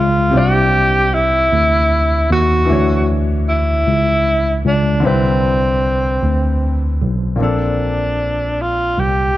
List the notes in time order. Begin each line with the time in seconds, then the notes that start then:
Already playing: C#2 C4 D4 F4 B4 E5
0.30 C3 C4 D4
0.35 C2 E4 G4 D5
1.14 E4
1.53 D2
2.30 D#2 F#4
2.65 E3 D4 E4
2.69 D2 F#4 C#5
3.49 E4
3.87 C#2
4.66 C#2 D4
5.00 D3 C4 D4
5.05 C2 C4 E4 B4
6.23 D2
7.02 B1
7.36 A#2 A#3 C4
7.41 A#1 D4 A4
8.61 F4
8.98 C2 G4